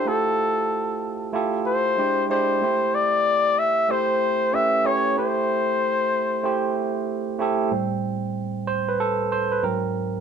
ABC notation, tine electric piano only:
X:1
M:4/4
L:1/16
Q:"Swing 16ths" 1/4=94
K:Am
V:1 name="Tine electric piano"
[A,EFGc]6 z2 [A,EFGA]4 [^G,DE=G^B]2 [^G,DE=Gd]2 | [A,CEGc]6 z2 [A,CEGc]4 [A,^CEGB]2 [A,CEG^c]2 | [A,CEGc]6 z2 [A,CEGc]4- [A,CEGc] z [A,CEGA]2 | z6 c B A2 c B ^A2 z2 |]
V:2 name="Tine electric piano" clef=bass
z16 | z16 | z16 | [A,,G,C]6 z6 [^G,,^F,^B,]4 |]